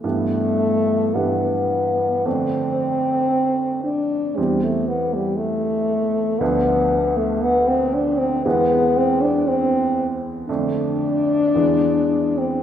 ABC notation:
X:1
M:4/4
L:1/16
Q:1/4=58
K:Ephr
V:1 name="French horn"
A,4 B,4 C6 D2 | G, A, B, G, A,4 B,3 A, B, C D C | B,2 C D C3 z D6- D C |]
V:2 name="Grand piano" clef=bass
[G,,E,G,B,]4 [G,,E,G,B,]4 [F,,D,A,D]8 | [E,,E,C]8 [D,,F,B,D]8 | [E,,E,^G,B,]8 [F,,D,A,D]4 [E,,E,G,B,]4 |]